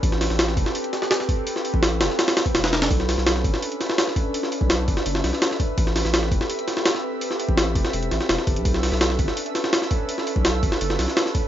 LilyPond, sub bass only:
\new Staff \with { instrumentName = "Sub bass" } { \clef bass \time 4/4 \key b \phrygian \tempo 4 = 167 a,,8. a,,8. e,,16 r2 r16 | r8. a,,8. e,,16 r4 r16 e,,4 | b,,8. b,,8. fis,,16 r2 r16 | r8. b,,8. fis,,16 r16 fis,,8 b,,16 r4 r16 |
a,,8. a,,8. e,,16 r2 r16 | r8. a,,8. e,,16 r16 e,,8 a,,16 r16 e,,16 r16 g,,16 c,16 | b,,8. b,,8. fis,,16 r2 r16 | r8. b,,8. fis,,16 r16 fis,,8 b,,16 r4 r16 | }